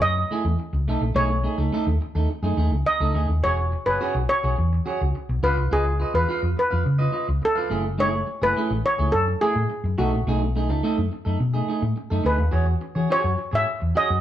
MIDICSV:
0, 0, Header, 1, 5, 480
1, 0, Start_track
1, 0, Tempo, 569260
1, 976, Time_signature, 4, 2, 24, 8
1, 11980, End_track
2, 0, Start_track
2, 0, Title_t, "Steel pan"
2, 0, Program_c, 0, 114
2, 15, Note_on_c, 0, 75, 106
2, 977, Note_on_c, 0, 73, 98
2, 1005, Note_off_c, 0, 75, 0
2, 2416, Note_on_c, 0, 75, 91
2, 2460, Note_off_c, 0, 73, 0
2, 2898, Note_on_c, 0, 73, 87
2, 2911, Note_off_c, 0, 75, 0
2, 3256, Note_on_c, 0, 71, 78
2, 3268, Note_off_c, 0, 73, 0
2, 3619, Note_on_c, 0, 73, 88
2, 3627, Note_off_c, 0, 71, 0
2, 4584, Note_on_c, 0, 71, 80
2, 4607, Note_off_c, 0, 73, 0
2, 4828, Note_off_c, 0, 71, 0
2, 4830, Note_on_c, 0, 68, 84
2, 5185, Note_on_c, 0, 71, 78
2, 5194, Note_off_c, 0, 68, 0
2, 5548, Note_off_c, 0, 71, 0
2, 5558, Note_on_c, 0, 71, 80
2, 5994, Note_off_c, 0, 71, 0
2, 6283, Note_on_c, 0, 69, 95
2, 6747, Note_on_c, 0, 73, 101
2, 6764, Note_off_c, 0, 69, 0
2, 7110, Note_on_c, 0, 71, 86
2, 7112, Note_off_c, 0, 73, 0
2, 7438, Note_off_c, 0, 71, 0
2, 7468, Note_on_c, 0, 73, 102
2, 7691, Note_on_c, 0, 69, 101
2, 7709, Note_off_c, 0, 73, 0
2, 7937, Note_on_c, 0, 68, 90
2, 7941, Note_off_c, 0, 69, 0
2, 8383, Note_off_c, 0, 68, 0
2, 8418, Note_on_c, 0, 66, 66
2, 10301, Note_off_c, 0, 66, 0
2, 10339, Note_on_c, 0, 71, 74
2, 11062, Note_on_c, 0, 73, 101
2, 11076, Note_off_c, 0, 71, 0
2, 11427, Note_off_c, 0, 73, 0
2, 11427, Note_on_c, 0, 76, 102
2, 11779, Note_on_c, 0, 75, 100
2, 11789, Note_off_c, 0, 76, 0
2, 11980, Note_off_c, 0, 75, 0
2, 11980, End_track
3, 0, Start_track
3, 0, Title_t, "Clean electric guitar"
3, 0, Program_c, 1, 27
3, 261, Note_on_c, 1, 57, 70
3, 268, Note_on_c, 1, 64, 90
3, 273, Note_on_c, 1, 68, 86
3, 368, Note_off_c, 1, 68, 0
3, 381, Note_off_c, 1, 64, 0
3, 435, Note_off_c, 1, 57, 0
3, 742, Note_on_c, 1, 57, 86
3, 749, Note_on_c, 1, 63, 81
3, 756, Note_on_c, 1, 69, 93
3, 862, Note_off_c, 1, 69, 0
3, 863, Note_off_c, 1, 63, 0
3, 916, Note_off_c, 1, 57, 0
3, 967, Note_on_c, 1, 57, 82
3, 975, Note_on_c, 1, 63, 78
3, 980, Note_on_c, 1, 68, 84
3, 1081, Note_off_c, 1, 68, 0
3, 1088, Note_off_c, 1, 63, 0
3, 1148, Note_off_c, 1, 57, 0
3, 1212, Note_on_c, 1, 57, 58
3, 1217, Note_on_c, 1, 63, 71
3, 1227, Note_on_c, 1, 68, 61
3, 1325, Note_off_c, 1, 63, 0
3, 1327, Note_off_c, 1, 68, 0
3, 1330, Note_on_c, 1, 69, 54
3, 1334, Note_off_c, 1, 57, 0
3, 1335, Note_on_c, 1, 63, 53
3, 1345, Note_on_c, 1, 57, 50
3, 1444, Note_off_c, 1, 57, 0
3, 1452, Note_off_c, 1, 63, 0
3, 1454, Note_on_c, 1, 57, 84
3, 1456, Note_off_c, 1, 69, 0
3, 1462, Note_on_c, 1, 63, 94
3, 1466, Note_on_c, 1, 69, 94
3, 1573, Note_off_c, 1, 69, 0
3, 1577, Note_off_c, 1, 63, 0
3, 1632, Note_off_c, 1, 57, 0
3, 1813, Note_on_c, 1, 69, 63
3, 1820, Note_on_c, 1, 63, 54
3, 1826, Note_on_c, 1, 57, 48
3, 1926, Note_off_c, 1, 57, 0
3, 1932, Note_off_c, 1, 63, 0
3, 1943, Note_off_c, 1, 69, 0
3, 2047, Note_on_c, 1, 68, 70
3, 2056, Note_on_c, 1, 63, 71
3, 2060, Note_on_c, 1, 57, 66
3, 2160, Note_off_c, 1, 57, 0
3, 2166, Note_off_c, 1, 63, 0
3, 2170, Note_on_c, 1, 57, 64
3, 2177, Note_off_c, 1, 68, 0
3, 2177, Note_on_c, 1, 63, 58
3, 2187, Note_on_c, 1, 68, 65
3, 2282, Note_off_c, 1, 68, 0
3, 2290, Note_off_c, 1, 63, 0
3, 2312, Note_off_c, 1, 57, 0
3, 2533, Note_on_c, 1, 69, 68
3, 2539, Note_on_c, 1, 63, 64
3, 2544, Note_on_c, 1, 57, 68
3, 2643, Note_off_c, 1, 57, 0
3, 2649, Note_off_c, 1, 63, 0
3, 2653, Note_on_c, 1, 57, 60
3, 2659, Note_on_c, 1, 63, 61
3, 2663, Note_off_c, 1, 69, 0
3, 2666, Note_on_c, 1, 68, 69
3, 2760, Note_off_c, 1, 68, 0
3, 2772, Note_off_c, 1, 63, 0
3, 2793, Note_off_c, 1, 57, 0
3, 2899, Note_on_c, 1, 66, 60
3, 2906, Note_on_c, 1, 68, 73
3, 2909, Note_on_c, 1, 73, 78
3, 3004, Note_off_c, 1, 73, 0
3, 3015, Note_off_c, 1, 68, 0
3, 3075, Note_off_c, 1, 66, 0
3, 3254, Note_on_c, 1, 73, 59
3, 3261, Note_on_c, 1, 68, 50
3, 3268, Note_on_c, 1, 66, 50
3, 3369, Note_off_c, 1, 66, 0
3, 3372, Note_off_c, 1, 68, 0
3, 3379, Note_off_c, 1, 73, 0
3, 3379, Note_on_c, 1, 66, 86
3, 3382, Note_on_c, 1, 68, 92
3, 3389, Note_on_c, 1, 73, 99
3, 3498, Note_off_c, 1, 73, 0
3, 3505, Note_off_c, 1, 68, 0
3, 3555, Note_off_c, 1, 66, 0
3, 3737, Note_on_c, 1, 73, 54
3, 3742, Note_on_c, 1, 68, 61
3, 3747, Note_on_c, 1, 66, 49
3, 3844, Note_off_c, 1, 66, 0
3, 3851, Note_off_c, 1, 68, 0
3, 3856, Note_off_c, 1, 73, 0
3, 4096, Note_on_c, 1, 66, 85
3, 4102, Note_on_c, 1, 68, 78
3, 4109, Note_on_c, 1, 73, 85
3, 4218, Note_off_c, 1, 73, 0
3, 4222, Note_off_c, 1, 68, 0
3, 4273, Note_off_c, 1, 66, 0
3, 4578, Note_on_c, 1, 65, 80
3, 4587, Note_on_c, 1, 71, 82
3, 4592, Note_on_c, 1, 77, 92
3, 4697, Note_off_c, 1, 77, 0
3, 4700, Note_off_c, 1, 71, 0
3, 4754, Note_off_c, 1, 65, 0
3, 4817, Note_on_c, 1, 65, 60
3, 4826, Note_on_c, 1, 71, 73
3, 4833, Note_on_c, 1, 75, 85
3, 4932, Note_off_c, 1, 75, 0
3, 4941, Note_off_c, 1, 71, 0
3, 4994, Note_off_c, 1, 65, 0
3, 5056, Note_on_c, 1, 65, 60
3, 5065, Note_on_c, 1, 71, 58
3, 5073, Note_on_c, 1, 75, 62
3, 5176, Note_off_c, 1, 71, 0
3, 5177, Note_off_c, 1, 75, 0
3, 5180, Note_on_c, 1, 77, 57
3, 5183, Note_off_c, 1, 65, 0
3, 5186, Note_on_c, 1, 71, 57
3, 5194, Note_on_c, 1, 65, 53
3, 5290, Note_off_c, 1, 65, 0
3, 5298, Note_off_c, 1, 71, 0
3, 5301, Note_on_c, 1, 65, 75
3, 5306, Note_off_c, 1, 77, 0
3, 5308, Note_on_c, 1, 71, 83
3, 5316, Note_on_c, 1, 77, 81
3, 5413, Note_off_c, 1, 77, 0
3, 5419, Note_off_c, 1, 71, 0
3, 5476, Note_off_c, 1, 65, 0
3, 5654, Note_on_c, 1, 77, 61
3, 5660, Note_on_c, 1, 71, 64
3, 5668, Note_on_c, 1, 65, 51
3, 5767, Note_off_c, 1, 65, 0
3, 5773, Note_off_c, 1, 71, 0
3, 5782, Note_off_c, 1, 77, 0
3, 5890, Note_on_c, 1, 75, 72
3, 5894, Note_on_c, 1, 71, 68
3, 5902, Note_on_c, 1, 65, 59
3, 5995, Note_off_c, 1, 65, 0
3, 6003, Note_off_c, 1, 71, 0
3, 6006, Note_on_c, 1, 65, 62
3, 6008, Note_off_c, 1, 75, 0
3, 6013, Note_on_c, 1, 71, 63
3, 6019, Note_on_c, 1, 75, 62
3, 6128, Note_off_c, 1, 75, 0
3, 6136, Note_off_c, 1, 71, 0
3, 6150, Note_off_c, 1, 65, 0
3, 6370, Note_on_c, 1, 77, 84
3, 6378, Note_on_c, 1, 71, 79
3, 6388, Note_on_c, 1, 65, 65
3, 6491, Note_on_c, 1, 57, 64
3, 6493, Note_off_c, 1, 65, 0
3, 6497, Note_on_c, 1, 64, 67
3, 6499, Note_off_c, 1, 71, 0
3, 6503, Note_on_c, 1, 68, 81
3, 6550, Note_off_c, 1, 77, 0
3, 6604, Note_off_c, 1, 68, 0
3, 6614, Note_off_c, 1, 64, 0
3, 6633, Note_off_c, 1, 57, 0
3, 6730, Note_on_c, 1, 57, 84
3, 6735, Note_on_c, 1, 64, 79
3, 6741, Note_on_c, 1, 68, 78
3, 6846, Note_off_c, 1, 68, 0
3, 6857, Note_off_c, 1, 64, 0
3, 6910, Note_off_c, 1, 57, 0
3, 7096, Note_on_c, 1, 68, 65
3, 7104, Note_on_c, 1, 64, 59
3, 7109, Note_on_c, 1, 57, 55
3, 7212, Note_off_c, 1, 57, 0
3, 7219, Note_off_c, 1, 64, 0
3, 7223, Note_on_c, 1, 57, 74
3, 7225, Note_off_c, 1, 68, 0
3, 7229, Note_on_c, 1, 64, 82
3, 7235, Note_on_c, 1, 68, 79
3, 7339, Note_off_c, 1, 68, 0
3, 7349, Note_off_c, 1, 64, 0
3, 7396, Note_off_c, 1, 57, 0
3, 7574, Note_on_c, 1, 68, 60
3, 7582, Note_on_c, 1, 64, 51
3, 7586, Note_on_c, 1, 57, 50
3, 7688, Note_off_c, 1, 57, 0
3, 7694, Note_off_c, 1, 64, 0
3, 7696, Note_off_c, 1, 68, 0
3, 7944, Note_on_c, 1, 57, 80
3, 7949, Note_on_c, 1, 64, 90
3, 7955, Note_on_c, 1, 68, 92
3, 8048, Note_off_c, 1, 68, 0
3, 8057, Note_off_c, 1, 64, 0
3, 8117, Note_off_c, 1, 57, 0
3, 8415, Note_on_c, 1, 57, 87
3, 8424, Note_on_c, 1, 63, 80
3, 8432, Note_on_c, 1, 69, 88
3, 8540, Note_off_c, 1, 69, 0
3, 8543, Note_off_c, 1, 63, 0
3, 8592, Note_off_c, 1, 57, 0
3, 8665, Note_on_c, 1, 57, 84
3, 8672, Note_on_c, 1, 63, 84
3, 8675, Note_on_c, 1, 68, 90
3, 8779, Note_off_c, 1, 68, 0
3, 8790, Note_off_c, 1, 63, 0
3, 8837, Note_off_c, 1, 57, 0
3, 8901, Note_on_c, 1, 57, 60
3, 8908, Note_on_c, 1, 63, 71
3, 8912, Note_on_c, 1, 68, 69
3, 9012, Note_off_c, 1, 63, 0
3, 9013, Note_off_c, 1, 68, 0
3, 9016, Note_on_c, 1, 69, 58
3, 9018, Note_off_c, 1, 57, 0
3, 9022, Note_on_c, 1, 63, 51
3, 9028, Note_on_c, 1, 57, 51
3, 9125, Note_off_c, 1, 57, 0
3, 9131, Note_off_c, 1, 63, 0
3, 9135, Note_on_c, 1, 57, 95
3, 9137, Note_off_c, 1, 69, 0
3, 9141, Note_on_c, 1, 63, 91
3, 9147, Note_on_c, 1, 69, 88
3, 9255, Note_off_c, 1, 69, 0
3, 9262, Note_off_c, 1, 63, 0
3, 9311, Note_off_c, 1, 57, 0
3, 9486, Note_on_c, 1, 69, 60
3, 9493, Note_on_c, 1, 63, 53
3, 9500, Note_on_c, 1, 57, 48
3, 9598, Note_off_c, 1, 57, 0
3, 9606, Note_off_c, 1, 63, 0
3, 9616, Note_off_c, 1, 69, 0
3, 9727, Note_on_c, 1, 68, 77
3, 9734, Note_on_c, 1, 63, 66
3, 9744, Note_on_c, 1, 57, 60
3, 9841, Note_off_c, 1, 57, 0
3, 9851, Note_on_c, 1, 57, 58
3, 9852, Note_off_c, 1, 63, 0
3, 9853, Note_off_c, 1, 68, 0
3, 9862, Note_on_c, 1, 63, 63
3, 9863, Note_on_c, 1, 68, 61
3, 9959, Note_off_c, 1, 68, 0
3, 9965, Note_off_c, 1, 63, 0
3, 9991, Note_off_c, 1, 57, 0
3, 10206, Note_on_c, 1, 69, 79
3, 10216, Note_on_c, 1, 63, 70
3, 10221, Note_on_c, 1, 57, 65
3, 10306, Note_off_c, 1, 57, 0
3, 10315, Note_off_c, 1, 63, 0
3, 10316, Note_on_c, 1, 57, 68
3, 10325, Note_on_c, 1, 63, 68
3, 10331, Note_off_c, 1, 69, 0
3, 10335, Note_on_c, 1, 68, 68
3, 10424, Note_off_c, 1, 68, 0
3, 10434, Note_off_c, 1, 63, 0
3, 10463, Note_off_c, 1, 57, 0
3, 10551, Note_on_c, 1, 66, 68
3, 10559, Note_on_c, 1, 68, 63
3, 10562, Note_on_c, 1, 73, 81
3, 10670, Note_off_c, 1, 73, 0
3, 10678, Note_off_c, 1, 68, 0
3, 10739, Note_off_c, 1, 66, 0
3, 10921, Note_on_c, 1, 73, 66
3, 10930, Note_on_c, 1, 68, 54
3, 10939, Note_on_c, 1, 66, 43
3, 11038, Note_off_c, 1, 66, 0
3, 11043, Note_off_c, 1, 68, 0
3, 11047, Note_off_c, 1, 73, 0
3, 11048, Note_on_c, 1, 66, 76
3, 11054, Note_on_c, 1, 68, 86
3, 11057, Note_on_c, 1, 73, 82
3, 11148, Note_off_c, 1, 73, 0
3, 11158, Note_off_c, 1, 68, 0
3, 11227, Note_off_c, 1, 66, 0
3, 11396, Note_on_c, 1, 73, 58
3, 11406, Note_on_c, 1, 68, 56
3, 11412, Note_on_c, 1, 66, 52
3, 11512, Note_off_c, 1, 66, 0
3, 11519, Note_off_c, 1, 68, 0
3, 11524, Note_off_c, 1, 73, 0
3, 11765, Note_on_c, 1, 66, 74
3, 11771, Note_on_c, 1, 68, 86
3, 11777, Note_on_c, 1, 73, 87
3, 11877, Note_off_c, 1, 73, 0
3, 11883, Note_off_c, 1, 68, 0
3, 11944, Note_off_c, 1, 66, 0
3, 11980, End_track
4, 0, Start_track
4, 0, Title_t, "Fingered electric bass"
4, 0, Program_c, 2, 33
4, 16, Note_on_c, 2, 42, 88
4, 189, Note_off_c, 2, 42, 0
4, 377, Note_on_c, 2, 40, 83
4, 463, Note_off_c, 2, 40, 0
4, 614, Note_on_c, 2, 37, 86
4, 738, Note_off_c, 2, 37, 0
4, 738, Note_on_c, 2, 35, 87
4, 824, Note_off_c, 2, 35, 0
4, 853, Note_on_c, 2, 34, 83
4, 941, Note_off_c, 2, 34, 0
4, 966, Note_on_c, 2, 35, 105
4, 1230, Note_off_c, 2, 35, 0
4, 1331, Note_on_c, 2, 37, 71
4, 1419, Note_off_c, 2, 37, 0
4, 1574, Note_on_c, 2, 39, 82
4, 1662, Note_off_c, 2, 39, 0
4, 1813, Note_on_c, 2, 39, 95
4, 1901, Note_off_c, 2, 39, 0
4, 2045, Note_on_c, 2, 42, 70
4, 2136, Note_off_c, 2, 42, 0
4, 2168, Note_on_c, 2, 39, 85
4, 2258, Note_off_c, 2, 39, 0
4, 2289, Note_on_c, 2, 37, 82
4, 2378, Note_off_c, 2, 37, 0
4, 2531, Note_on_c, 2, 37, 88
4, 2620, Note_off_c, 2, 37, 0
4, 2652, Note_on_c, 2, 38, 101
4, 2740, Note_off_c, 2, 38, 0
4, 2774, Note_on_c, 2, 39, 77
4, 2862, Note_off_c, 2, 39, 0
4, 2889, Note_on_c, 2, 28, 95
4, 3152, Note_off_c, 2, 28, 0
4, 3258, Note_on_c, 2, 30, 67
4, 3344, Note_off_c, 2, 30, 0
4, 3496, Note_on_c, 2, 35, 82
4, 3583, Note_off_c, 2, 35, 0
4, 3741, Note_on_c, 2, 35, 98
4, 3826, Note_off_c, 2, 35, 0
4, 3865, Note_on_c, 2, 40, 92
4, 4036, Note_off_c, 2, 40, 0
4, 4227, Note_on_c, 2, 37, 97
4, 4310, Note_off_c, 2, 37, 0
4, 4461, Note_on_c, 2, 35, 79
4, 4547, Note_off_c, 2, 35, 0
4, 4579, Note_on_c, 2, 37, 94
4, 4704, Note_off_c, 2, 37, 0
4, 4704, Note_on_c, 2, 36, 68
4, 4788, Note_off_c, 2, 36, 0
4, 4821, Note_on_c, 2, 37, 102
4, 5079, Note_off_c, 2, 37, 0
4, 5178, Note_on_c, 2, 40, 86
4, 5264, Note_off_c, 2, 40, 0
4, 5419, Note_on_c, 2, 41, 81
4, 5505, Note_off_c, 2, 41, 0
4, 5672, Note_on_c, 2, 41, 84
4, 5753, Note_off_c, 2, 41, 0
4, 5784, Note_on_c, 2, 49, 83
4, 5955, Note_off_c, 2, 49, 0
4, 6141, Note_on_c, 2, 37, 94
4, 6226, Note_off_c, 2, 37, 0
4, 6500, Note_on_c, 2, 30, 94
4, 6932, Note_off_c, 2, 30, 0
4, 7098, Note_on_c, 2, 30, 77
4, 7184, Note_off_c, 2, 30, 0
4, 7340, Note_on_c, 2, 33, 92
4, 7426, Note_off_c, 2, 33, 0
4, 7581, Note_on_c, 2, 37, 99
4, 7666, Note_off_c, 2, 37, 0
4, 7704, Note_on_c, 2, 42, 88
4, 7875, Note_off_c, 2, 42, 0
4, 8057, Note_on_c, 2, 45, 88
4, 8143, Note_off_c, 2, 45, 0
4, 8295, Note_on_c, 2, 42, 84
4, 8382, Note_off_c, 2, 42, 0
4, 8419, Note_on_c, 2, 35, 100
4, 8538, Note_off_c, 2, 35, 0
4, 8538, Note_on_c, 2, 34, 82
4, 8624, Note_off_c, 2, 34, 0
4, 8659, Note_on_c, 2, 35, 104
4, 9020, Note_off_c, 2, 35, 0
4, 9020, Note_on_c, 2, 37, 74
4, 9104, Note_off_c, 2, 37, 0
4, 9260, Note_on_c, 2, 42, 74
4, 9345, Note_off_c, 2, 42, 0
4, 9496, Note_on_c, 2, 42, 85
4, 9582, Note_off_c, 2, 42, 0
4, 9611, Note_on_c, 2, 47, 85
4, 9785, Note_off_c, 2, 47, 0
4, 9968, Note_on_c, 2, 45, 94
4, 10057, Note_off_c, 2, 45, 0
4, 10212, Note_on_c, 2, 42, 86
4, 10299, Note_off_c, 2, 42, 0
4, 10326, Note_on_c, 2, 38, 86
4, 10446, Note_off_c, 2, 38, 0
4, 10446, Note_on_c, 2, 39, 81
4, 10535, Note_off_c, 2, 39, 0
4, 10563, Note_on_c, 2, 40, 94
4, 10740, Note_off_c, 2, 40, 0
4, 10924, Note_on_c, 2, 52, 78
4, 11014, Note_off_c, 2, 52, 0
4, 11165, Note_on_c, 2, 42, 79
4, 11254, Note_off_c, 2, 42, 0
4, 11407, Note_on_c, 2, 44, 86
4, 11495, Note_off_c, 2, 44, 0
4, 11652, Note_on_c, 2, 40, 74
4, 11738, Note_off_c, 2, 40, 0
4, 11891, Note_on_c, 2, 42, 93
4, 11977, Note_off_c, 2, 42, 0
4, 11980, End_track
5, 0, Start_track
5, 0, Title_t, "Muted clean electric guitar strokes"
5, 17, Note_on_c, 9, 29, 34
5, 102, Note_off_c, 9, 29, 0
5, 145, Note_on_c, 9, 29, 34
5, 230, Note_off_c, 9, 29, 0
5, 378, Note_on_c, 9, 29, 50
5, 463, Note_off_c, 9, 29, 0
5, 496, Note_on_c, 9, 29, 38
5, 581, Note_off_c, 9, 29, 0
5, 619, Note_on_c, 9, 29, 52
5, 703, Note_off_c, 9, 29, 0
5, 866, Note_on_c, 9, 29, 46
5, 950, Note_off_c, 9, 29, 0
5, 1091, Note_on_c, 9, 29, 46
5, 1175, Note_off_c, 9, 29, 0
5, 1577, Note_on_c, 9, 29, 44
5, 1661, Note_off_c, 9, 29, 0
5, 1694, Note_on_c, 9, 29, 42
5, 1778, Note_off_c, 9, 29, 0
5, 1936, Note_on_c, 9, 29, 38
5, 2021, Note_off_c, 9, 29, 0
5, 2292, Note_on_c, 9, 29, 44
5, 2376, Note_off_c, 9, 29, 0
5, 2408, Note_on_c, 9, 29, 36
5, 2492, Note_off_c, 9, 29, 0
5, 2771, Note_on_c, 9, 29, 51
5, 2855, Note_off_c, 9, 29, 0
5, 3014, Note_on_c, 9, 29, 47
5, 3098, Note_off_c, 9, 29, 0
5, 3139, Note_on_c, 9, 29, 40
5, 3223, Note_off_c, 9, 29, 0
5, 3508, Note_on_c, 9, 29, 46
5, 3592, Note_off_c, 9, 29, 0
5, 3622, Note_on_c, 9, 29, 44
5, 3706, Note_off_c, 9, 29, 0
5, 3855, Note_on_c, 9, 29, 31
5, 3939, Note_off_c, 9, 29, 0
5, 3988, Note_on_c, 9, 29, 48
5, 4072, Note_off_c, 9, 29, 0
5, 4229, Note_on_c, 9, 29, 37
5, 4313, Note_off_c, 9, 29, 0
5, 4340, Note_on_c, 9, 29, 35
5, 4424, Note_off_c, 9, 29, 0
5, 4465, Note_on_c, 9, 29, 40
5, 4549, Note_off_c, 9, 29, 0
5, 4700, Note_on_c, 9, 29, 50
5, 4784, Note_off_c, 9, 29, 0
5, 4942, Note_on_c, 9, 29, 48
5, 5026, Note_off_c, 9, 29, 0
5, 5416, Note_on_c, 9, 29, 48
5, 5500, Note_off_c, 9, 29, 0
5, 5538, Note_on_c, 9, 29, 43
5, 5623, Note_off_c, 9, 29, 0
5, 5777, Note_on_c, 9, 29, 37
5, 5861, Note_off_c, 9, 29, 0
5, 6138, Note_on_c, 9, 29, 43
5, 6222, Note_off_c, 9, 29, 0
5, 6255, Note_on_c, 9, 29, 37
5, 6339, Note_off_c, 9, 29, 0
5, 6614, Note_on_c, 9, 29, 42
5, 6699, Note_off_c, 9, 29, 0
5, 6856, Note_on_c, 9, 29, 35
5, 6940, Note_off_c, 9, 29, 0
5, 6973, Note_on_c, 9, 29, 37
5, 7057, Note_off_c, 9, 29, 0
5, 7350, Note_on_c, 9, 29, 40
5, 7434, Note_off_c, 9, 29, 0
5, 7465, Note_on_c, 9, 29, 36
5, 7549, Note_off_c, 9, 29, 0
5, 7699, Note_on_c, 9, 29, 43
5, 7783, Note_off_c, 9, 29, 0
5, 7815, Note_on_c, 9, 29, 39
5, 7900, Note_off_c, 9, 29, 0
5, 8058, Note_on_c, 9, 29, 41
5, 8143, Note_off_c, 9, 29, 0
5, 8178, Note_on_c, 9, 29, 40
5, 8262, Note_off_c, 9, 29, 0
5, 8303, Note_on_c, 9, 29, 37
5, 8388, Note_off_c, 9, 29, 0
5, 8544, Note_on_c, 9, 29, 43
5, 8628, Note_off_c, 9, 29, 0
5, 8789, Note_on_c, 9, 29, 43
5, 8874, Note_off_c, 9, 29, 0
5, 9259, Note_on_c, 9, 29, 48
5, 9343, Note_off_c, 9, 29, 0
5, 9374, Note_on_c, 9, 29, 36
5, 9458, Note_off_c, 9, 29, 0
5, 9608, Note_on_c, 9, 29, 31
5, 9692, Note_off_c, 9, 29, 0
5, 9970, Note_on_c, 9, 29, 45
5, 10054, Note_off_c, 9, 29, 0
5, 10086, Note_on_c, 9, 29, 39
5, 10170, Note_off_c, 9, 29, 0
5, 10434, Note_on_c, 9, 29, 51
5, 10518, Note_off_c, 9, 29, 0
5, 10680, Note_on_c, 9, 29, 39
5, 10764, Note_off_c, 9, 29, 0
5, 10802, Note_on_c, 9, 29, 43
5, 10887, Note_off_c, 9, 29, 0
5, 11159, Note_on_c, 9, 29, 52
5, 11243, Note_off_c, 9, 29, 0
5, 11283, Note_on_c, 9, 29, 35
5, 11368, Note_off_c, 9, 29, 0
5, 11523, Note_on_c, 9, 29, 38
5, 11607, Note_off_c, 9, 29, 0
5, 11639, Note_on_c, 9, 29, 39
5, 11723, Note_off_c, 9, 29, 0
5, 11887, Note_on_c, 9, 29, 35
5, 11971, Note_off_c, 9, 29, 0
5, 11980, End_track
0, 0, End_of_file